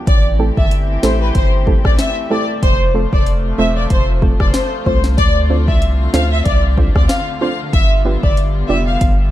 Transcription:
0.07 0.51 A1 loud
0.07 2.60 E3 medium
0.07 7.69 A3 medium
0.07 2.60 C4 medium
0.07 2.60 G4 medium
0.07 0.19 D5 medium
0.07 kick loud
0.07 closed hi-hat medium
0.39 0.53 A3 medium
0.39 0.53 C4 medium
0.39 0.54 E4 medium
0.39 0.54 G4 medium
0.39 0.54 A4 medium
0.57 0.98 G1 loud
0.57 0.67 E5 medium
0.57 kick loud
0.71 closed hi-hat medium
1.03 1.31 A1 loud
1.03 1.17 A3 medium
1.03 1.17 C4 medium
1.03 1.17 E4 medium
1.03 1.18 G4 medium
1.03 1.18 A4 medium
1.03 1.15 C5 medium
1.03 snare loud
1.21 1.31 B4 medium
1.35 1.79 G1 loud
1.35 1.47 C5 medium
1.35 kick loud
1.35 closed hi-hat medium
1.67 1.81 A3 medium
1.67 1.81 C4 medium
1.67 1.81 E4 medium
1.67 1.81 G4 medium
1.67 1.81 A4 medium
1.67 kick medium
1.85 1.97 A1 loud
1.85 1.94 D5 medium
1.85 kick loud
1.85 cross-stick loud
1.99 2.11 E5 medium
1.99 snare loud
1.99 closed hi-hat medium
2.30 2.45 A3 medium
2.30 2.45 C4 medium
2.30 2.45 E4 medium
2.30 2.45 G4 medium
2.30 2.45 A4 medium
2.30 2.43 D5 medium
2.63 3.07 F1 loud
2.63 5.16 C3 medium
2.63 5.16 F3 medium
2.63 9.31 F4 medium
2.63 2.75 C5 loud
2.63 kick loud
2.63 closed hi-hat medium
2.94 3.09 A3 medium
2.94 3.09 C4 medium
2.94 3.09 F4 medium
2.94 3.09 A4 medium
2.94 3.09 C5 medium
3.13 3.53 F1 medium
3.13 3.22 D5 medium
3.13 kick loud
3.26 closed hi-hat medium
3.58 3.87 E1 loud
3.58 3.73 A3 medium
3.58 3.73 C4 medium
3.58 3.73 F4 medium
3.58 3.73 A4 medium
3.58 3.73 C5 medium
3.58 3.71 E5 medium
3.76 3.86 D5 medium
3.90 4.34 F1 loud
3.90 4.02 C5 loud
3.90 kick medium
3.90 closed hi-hat medium
4.22 4.36 A3 medium
4.22 4.36 C4 medium
4.22 4.37 F4 medium
4.22 4.37 A4 medium
4.22 4.37 C5 medium
4.22 kick medium
4.40 4.53 F1 medium
4.40 4.50 D5 medium
4.40 kick loud
4.40 cross-stick loud
4.54 4.66 C5 medium
4.54 snare loud
4.54 closed hi-hat medium
4.86 5.20 C2 loud
4.86 5.00 A3 medium
4.86 5.00 C4 medium
4.86 5.00 F4 medium
4.86 5.01 A4 medium
4.86 4.98 C5 medium
4.86 5.01 C5 medium
4.86 kick medium
5.04 snare medium
5.18 5.70 D2 loud
5.18 9.31 D3 medium
5.18 7.71 C4 medium
5.18 5.30 D5 loud
5.18 kick loud
5.18 closed hi-hat medium
5.50 5.64 C4 medium
5.50 5.64 D4 medium
5.50 5.64 F4 medium
5.50 5.64 A4 medium
5.50 5.64 C5 medium
5.68 6.08 C2 medium
5.68 5.77 E5 medium
5.68 kick loud
5.82 closed hi-hat medium
6.13 6.42 D2 loud
6.13 6.28 C4 medium
6.13 6.28 D4 medium
6.13 6.28 F4 medium
6.13 6.28 A4 medium
6.13 6.28 C5 medium
6.13 6.26 F5 medium
6.13 snare loud
6.32 6.41 E5 medium
6.46 6.90 C2 loud
6.46 6.58 D5 medium
6.46 kick loud
6.46 closed hi-hat medium
6.77 6.92 C4 medium
6.77 6.92 D4 medium
6.77 6.92 F4 medium
6.77 6.92 A4 medium
6.77 6.92 C5 medium
6.77 kick medium
6.95 7.08 D2 loud
6.95 7.05 D5 medium
6.95 kick loud
6.95 cross-stick loud
7.09 7.22 F5 medium
7.09 snare loud
7.09 closed hi-hat medium
7.41 7.56 C4 medium
7.41 7.56 D4 medium
7.41 7.56 F4 medium
7.41 7.56 A4 medium
7.41 7.56 C5 medium
7.41 7.53 F5 medium
7.73 8.17 G1 loud
7.73 9.31 G3 medium
7.73 9.31 B3 medium
7.73 7.85 E5 loud
7.73 kick loud
7.73 closed hi-hat medium
8.05 8.19 B3 medium
8.05 8.19 D4 medium
8.05 8.20 F4 medium
8.05 8.20 G4 medium
8.05 8.20 B4 medium
8.23 8.64 G1 medium
8.23 8.33 D5 medium
8.23 kick loud
8.37 closed hi-hat medium
8.69 8.97 F1 medium
8.69 8.83 B3 medium
8.69 8.83 D4 medium
8.69 8.83 F4 medium
8.69 8.84 G4 medium
8.69 8.84 D5 medium
8.69 8.81 E5 medium
8.87 8.96 F5 medium
9.01 9.31 G1 loud
9.01 kick loud
9.01 closed hi-hat medium

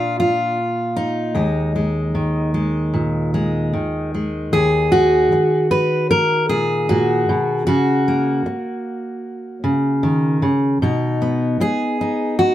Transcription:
0.00 1.36 A#2 medium
0.00 0.57 D4 medium
0.00 0.19 F4 medium
0.20 1.36 F4 medium
0.96 4.53 D#4 medium
1.35 4.53 D#2 medium
1.35 1.75 G#3 soft
1.76 2.53 G#3 soft
2.15 3.72 D#3 medium
2.54 3.33 G#3 soft
2.94 3.73 A#2 medium
3.34 4.13 G#3 soft
3.73 7.68 D#3 soft
4.14 4.53 G#3 soft
4.53 5.31 D#2 medium
4.53 5.71 G#4 medium
4.92 6.50 F#4 medium
5.32 muted steel-string acoustic guitar stroke medium
5.71 6.10 B4 medium
6.11 6.49 A#4 medium
6.49 6.89 A#2 medium
6.49 7.67 G#4 medium
6.89 7.29 A#2 medium
6.89 7.65 F#4 medium
7.29 7.67 B2 medium
7.67 8.45 C#3 medium
7.67 10.81 F#4 medium
8.08 10.77 A#3 soft
8.46 muted steel-string acoustic guitar stroke medium
9.64 10.41 C#3 medium
10.03 10.42 D#3 medium
10.42 10.81 C#3 medium
10.82 11.59 B2 medium
10.82 12.00 D#4 soft
11.22 12.55 B3 soft
11.60 12.38 G#4 medium
11.60 muted steel-string acoustic guitar stroke medium
12.01 12.55 D#4 soft
12.39 12.55 F#4 medium

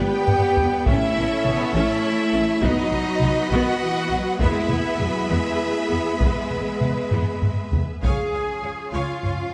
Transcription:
0.00 0.25 B3 medium
0.00 0.87 B3 loud
0.00 0.88 B3 medium
0.00 0.69 G4 loud
0.00 0.86 G4 medium
0.00 0.82 B4 medium
0.00 0.87 B4 medium
0.00 0.86 D5 medium
0.00 0.87 D5 medium
0.00 0.83 G5 medium
0.00 0.84 G5 loud
0.00 0.87 G5 loud
0.27 taiko low-mid loud
0.57 0.65 G1 medium
0.57 0.66 B3 medium
0.57 taiko low medium
0.86 0.94 A1 loud
0.86 1.16 A3 loud
0.86 2.63 C#4 loud
0.86 1.14 C#4 loud
0.86 1.73 E4 loud
0.86 2.63 E4 loud
0.86 2.63 A4 loud
0.86 2.63 C#5 medium
0.86 2.63 C#5 loud
0.86 2.63 E5 medium
0.86 1.75 E5 loud
0.86 1.74 E5 loud
0.86 taiko loud
1.15 1.24 A1 medium
1.15 1.25 B3 medium
1.15 1.46 C#4 medium
1.15 taiko mid medium
1.45 1.53 A1 medium
1.45 1.75 B3 loud
1.45 1.54 C#4 medium
1.45 taiko mid medium
1.74 1.82 A1 loud
1.74 2.62 A3 loud
1.74 2.02 C#4 loud
1.74 2.61 E4 loud
1.74 2.62 E5 loud
2.33 2.42 A1 medium
2.33 2.41 C#4 medium
2.61 2.70 B1 loud
2.61 3.52 F#3 medium
2.61 8.03 B3 loud
2.61 2.90 B3 loud
2.61 3.51 D#4 loud
2.61 4.40 F#4 loud
2.61 4.37 F#4 loud
2.61 8.03 B4 loud
2.61 4.40 D#5 loud
2.61 4.36 D#5 loud
2.61 3.52 D#5 loud
2.61 4.37 B5 medium
2.61 taiko loud
2.92 3.01 B1 medium
2.92 3.01 A3 medium
2.92 taiko mid medium
3.21 3.29 B1 medium
3.21 3.30 B3 medium
3.21 taiko mid medium
3.50 3.59 B1 loud
3.50 3.81 D#3 medium
3.50 3.80 B3 loud
3.50 4.40 F#4 loud
3.50 4.40 F#5 loud
3.50 4.38 F#5 loud
3.81 4.11 E3 medium
4.10 4.18 B1 medium
4.10 4.40 F#3 medium
4.10 4.18 B3 medium
4.39 4.48 E2 medium
4.39 4.70 G#3 medium
4.39 4.68 B3 loud
4.39 5.28 E4 loud
4.39 7.83 G#4 loud
4.39 8.03 G#4 loud
4.39 7.79 E5 loud
4.39 5.28 E5 loud
4.39 8.04 E5 loud
4.39 5.28 E5 medium
4.39 7.79 B5 loud
4.39 taiko loud
4.69 4.78 E2 medium
4.69 4.78 A3 medium
4.69 5.00 B3 medium
4.69 taiko mid medium
4.99 5.07 E2 medium
4.99 5.30 F#3 medium
4.99 5.07 B3 medium
4.99 taiko mid medium
5.29 5.38 E2 medium
5.29 5.60 G#3 medium
5.29 5.58 B3 medium
5.29 6.19 E4 loud
5.29 6.19 E5 loud
5.60 5.90 A3 medium
5.90 5.98 E2 medium
5.90 6.20 B3 medium
5.90 5.99 B3 medium
6.18 6.29 E2 medium
6.18 7.55 G#3 medium
6.18 7.69 B3 medium
6.18 6.49 B3 medium
6.18 7.73 B4 medium
6.18 taiko loud
6.50 6.59 E2 medium
6.50 6.58 A3 soft
6.50 taiko mid medium
6.81 6.89 E2 medium
6.81 6.89 B3 soft
6.81 taiko mid medium
7.11 7.19 E2 medium
7.11 7.40 B3 medium
7.11 taiko low-mid medium
7.42 taiko low-mid medium
7.72 7.80 E2 medium
7.72 7.81 B3 medium
7.72 taiko low medium
8.02 8.10 C#2 medium
8.02 9.54 F3 medium
8.02 9.54 C#4 medium
8.02 9.54 F4 medium
8.02 8.90 G#4 medium
8.02 9.54 G#4 medium
8.02 8.32 C#5 medium
8.02 9.54 C#5 medium
8.02 8.31 F5 medium
8.02 8.90 G#5 medium
8.02 8.32 G#5 medium
8.02 taiko medium
8.31 8.39 C#2 soft
8.31 8.43 C#5 soft
8.31 8.41 F5 soft
8.31 8.42 G#5 soft
8.63 8.71 C#2 medium
8.63 8.71 C#5 soft
8.63 8.72 C#5 medium
8.63 8.71 F5 medium
8.92 9.00 C#2 medium
8.92 9.54 F4 medium
8.92 9.22 C#5 medium
8.92 9.21 F5 medium
8.92 9.54 F5 medium
8.92 9.21 G#5 medium
9.23 9.31 C#2 soft
9.23 9.32 C#5 medium
9.23 9.31 F5 soft
9.23 9.32 G#5 medium
9.23 taiko low-mid medium

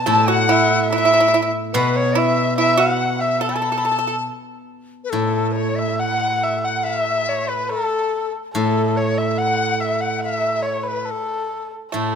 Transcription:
0.06 1.75 A2 medium
0.06 0.26 A4 medium
0.06 0.30 A5 medium
0.06 0.28 A5 loud
0.28 0.47 F#4 medium
0.28 0.83 F#5 loud
0.32 0.53 F#5 medium
0.49 0.88 E4 loud
0.49 0.92 E5 medium
0.83 0.90 F#5 medium
0.89 0.97 E4 medium
0.89 1.53 E5 loud
0.89 1.51 E5 loud
0.98 1.04 E4 medium
1.05 1.12 E4 medium
1.14 1.19 E4 medium
1.20 1.27 E4 medium
1.28 1.33 E4 medium
1.34 1.41 E4 medium
1.42 1.49 E4 medium
1.73 4.27 B2 medium
1.73 2.13 B3 medium
1.73 1.98 B4 medium
1.73 1.95 B4 loud
1.96 2.17 C#5 medium
1.96 2.19 C#5 medium
2.15 2.54 E4 medium
2.15 2.56 E5 medium
2.15 2.58 E5 loud
2.57 2.77 E4 medium
2.57 2.77 E5 loud
2.57 2.81 E5 loud
2.77 3.37 F#4 medium
2.77 3.21 F#5 medium
2.77 3.23 F#5 medium
3.20 3.42 E5 medium
3.20 3.43 E5 medium
3.40 3.48 A4 medium
3.40 3.51 A5 medium
3.40 4.27 A5 medium
3.49 3.54 A4 medium
3.49 3.59 B5 medium
3.56 3.61 A4 medium
3.56 3.66 A5 medium
3.62 3.70 A4 medium
3.62 3.72 B5 medium
3.70 3.76 A4 medium
3.70 3.80 A5 medium
3.78 3.84 A4 medium
3.78 3.88 B5 medium
3.85 3.90 A4 medium
3.85 4.25 A5 medium
3.91 3.97 A4 medium
3.99 4.06 A4 medium
4.07 4.15 A4 medium
5.04 5.11 B4 medium
5.10 7.70 A2 medium
5.10 5.54 A4 medium
5.15 5.54 A4 medium
5.52 5.77 C#5 medium
5.58 5.80 C#5 medium
5.75 5.98 E5 medium
5.75 6.01 E5 medium
5.98 6.59 F#5 medium
5.98 6.44 F#5 loud
6.43 6.66 E5 medium
6.63 6.85 F#5 medium
6.84 7.50 E5 medium
6.84 7.30 E5 medium
7.28 7.50 C#5 medium
7.48 7.71 B4 medium
7.48 7.72 B4 medium
7.69 8.33 A4 medium
8.54 11.08 A2 medium
8.54 8.98 A4 medium
8.96 9.19 C#5 medium
9.18 9.39 E5 medium
9.18 9.40 E5 medium
9.38 9.82 F#5 medium
9.80 10.02 E5 medium
9.80 10.04 E5 medium
10.00 10.20 F#5 medium
10.00 10.23 F#5 medium
10.21 10.64 E5 medium
10.21 10.69 E5 medium
10.62 10.85 C#5 medium
10.67 10.89 C#5 medium
10.83 11.06 B4 medium
10.88 11.12 B4 medium
11.05 11.71 A4 medium
11.11 11.74 A4 medium
11.92 12.15 A2 soft
11.92 12.15 A3 medium
11.92 12.15 A4 medium

